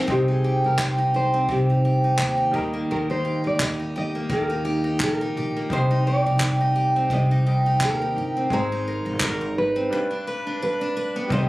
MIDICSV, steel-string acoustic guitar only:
0, 0, Header, 1, 2, 480
1, 0, Start_track
1, 0, Key_signature, -3, "minor"
1, 0, Tempo, 701754
1, 53, Time_signature, 4, 2, 24, 8
1, 7858, End_track
2, 0, Start_track
2, 0, Title_t, "Steel-string acoustic guitar"
2, 0, Program_c, 0, 25
2, 0, Note_on_c, 0, 56, 76
2, 0, Note_on_c, 0, 60, 50
2, 0, Note_on_c, 0, 63, 57
2, 0, Note_on_c, 0, 70, 60
2, 52, Note_on_c, 0, 48, 69
2, 105, Note_off_c, 0, 70, 0
2, 107, Note_off_c, 0, 56, 0
2, 190, Note_off_c, 0, 63, 0
2, 193, Note_on_c, 0, 63, 52
2, 303, Note_on_c, 0, 67, 58
2, 437, Note_off_c, 0, 63, 0
2, 440, Note_on_c, 0, 63, 53
2, 540, Note_off_c, 0, 67, 0
2, 543, Note_on_c, 0, 67, 57
2, 669, Note_off_c, 0, 63, 0
2, 672, Note_on_c, 0, 63, 52
2, 779, Note_off_c, 0, 67, 0
2, 781, Note_on_c, 0, 67, 66
2, 912, Note_off_c, 0, 60, 0
2, 915, Note_on_c, 0, 60, 57
2, 1008, Note_off_c, 0, 48, 0
2, 1016, Note_on_c, 0, 48, 73
2, 1158, Note_off_c, 0, 63, 0
2, 1160, Note_on_c, 0, 63, 55
2, 1262, Note_off_c, 0, 67, 0
2, 1264, Note_on_c, 0, 67, 61
2, 1393, Note_off_c, 0, 63, 0
2, 1395, Note_on_c, 0, 63, 49
2, 1501, Note_off_c, 0, 67, 0
2, 1504, Note_on_c, 0, 67, 70
2, 1623, Note_off_c, 0, 63, 0
2, 1625, Note_on_c, 0, 63, 58
2, 1732, Note_off_c, 0, 48, 0
2, 1735, Note_on_c, 0, 51, 75
2, 1793, Note_off_c, 0, 60, 0
2, 1870, Note_on_c, 0, 58, 55
2, 1987, Note_off_c, 0, 51, 0
2, 1990, Note_on_c, 0, 51, 72
2, 2116, Note_off_c, 0, 63, 0
2, 2119, Note_on_c, 0, 63, 54
2, 2218, Note_off_c, 0, 67, 0
2, 2221, Note_on_c, 0, 67, 59
2, 2349, Note_off_c, 0, 63, 0
2, 2352, Note_on_c, 0, 63, 50
2, 2454, Note_off_c, 0, 67, 0
2, 2457, Note_on_c, 0, 67, 59
2, 2593, Note_off_c, 0, 63, 0
2, 2596, Note_on_c, 0, 63, 50
2, 2704, Note_off_c, 0, 67, 0
2, 2706, Note_on_c, 0, 67, 67
2, 2831, Note_off_c, 0, 58, 0
2, 2839, Note_on_c, 0, 58, 57
2, 2936, Note_off_c, 0, 51, 0
2, 2939, Note_on_c, 0, 51, 77
2, 3073, Note_off_c, 0, 63, 0
2, 3076, Note_on_c, 0, 63, 56
2, 3177, Note_off_c, 0, 67, 0
2, 3179, Note_on_c, 0, 67, 63
2, 3308, Note_off_c, 0, 63, 0
2, 3311, Note_on_c, 0, 63, 57
2, 3428, Note_off_c, 0, 67, 0
2, 3430, Note_on_c, 0, 67, 70
2, 3561, Note_off_c, 0, 63, 0
2, 3564, Note_on_c, 0, 63, 59
2, 3672, Note_off_c, 0, 67, 0
2, 3674, Note_on_c, 0, 67, 62
2, 3795, Note_off_c, 0, 58, 0
2, 3807, Note_on_c, 0, 58, 53
2, 3916, Note_off_c, 0, 51, 0
2, 3918, Note_on_c, 0, 48, 73
2, 3959, Note_off_c, 0, 58, 0
2, 4037, Note_off_c, 0, 63, 0
2, 4040, Note_on_c, 0, 63, 54
2, 4149, Note_off_c, 0, 67, 0
2, 4151, Note_on_c, 0, 67, 60
2, 4283, Note_off_c, 0, 63, 0
2, 4286, Note_on_c, 0, 63, 52
2, 4385, Note_off_c, 0, 67, 0
2, 4398, Note_on_c, 0, 67, 62
2, 4516, Note_off_c, 0, 63, 0
2, 4519, Note_on_c, 0, 63, 59
2, 4612, Note_off_c, 0, 67, 0
2, 4621, Note_on_c, 0, 67, 66
2, 4761, Note_on_c, 0, 60, 56
2, 4854, Note_off_c, 0, 48, 0
2, 4862, Note_on_c, 0, 48, 81
2, 4998, Note_off_c, 0, 63, 0
2, 5001, Note_on_c, 0, 63, 60
2, 5098, Note_off_c, 0, 67, 0
2, 5106, Note_on_c, 0, 67, 66
2, 5237, Note_off_c, 0, 63, 0
2, 5240, Note_on_c, 0, 63, 58
2, 5342, Note_off_c, 0, 67, 0
2, 5355, Note_on_c, 0, 67, 69
2, 5475, Note_off_c, 0, 63, 0
2, 5483, Note_on_c, 0, 63, 60
2, 5587, Note_off_c, 0, 67, 0
2, 5595, Note_on_c, 0, 67, 65
2, 5716, Note_off_c, 0, 60, 0
2, 5723, Note_on_c, 0, 60, 54
2, 5834, Note_on_c, 0, 56, 78
2, 5873, Note_off_c, 0, 48, 0
2, 5877, Note_off_c, 0, 60, 0
2, 5877, Note_off_c, 0, 63, 0
2, 5880, Note_off_c, 0, 67, 0
2, 5964, Note_on_c, 0, 63, 59
2, 6070, Note_on_c, 0, 70, 59
2, 6188, Note_off_c, 0, 63, 0
2, 6196, Note_on_c, 0, 63, 55
2, 6300, Note_off_c, 0, 70, 0
2, 6308, Note_on_c, 0, 70, 62
2, 6428, Note_off_c, 0, 63, 0
2, 6436, Note_on_c, 0, 63, 57
2, 6543, Note_off_c, 0, 70, 0
2, 6675, Note_on_c, 0, 60, 58
2, 6789, Note_on_c, 0, 43, 84
2, 6833, Note_off_c, 0, 60, 0
2, 6833, Note_off_c, 0, 63, 0
2, 6838, Note_off_c, 0, 56, 0
2, 6913, Note_on_c, 0, 62, 59
2, 7027, Note_on_c, 0, 71, 66
2, 7150, Note_off_c, 0, 62, 0
2, 7159, Note_on_c, 0, 62, 57
2, 7258, Note_off_c, 0, 71, 0
2, 7266, Note_on_c, 0, 71, 72
2, 7387, Note_off_c, 0, 62, 0
2, 7395, Note_on_c, 0, 62, 61
2, 7493, Note_off_c, 0, 71, 0
2, 7501, Note_on_c, 0, 71, 66
2, 7633, Note_on_c, 0, 59, 53
2, 7743, Note_on_c, 0, 48, 81
2, 7790, Note_off_c, 0, 59, 0
2, 7790, Note_off_c, 0, 71, 0
2, 7791, Note_off_c, 0, 62, 0
2, 7793, Note_off_c, 0, 43, 0
2, 7858, Note_off_c, 0, 48, 0
2, 7858, End_track
0, 0, End_of_file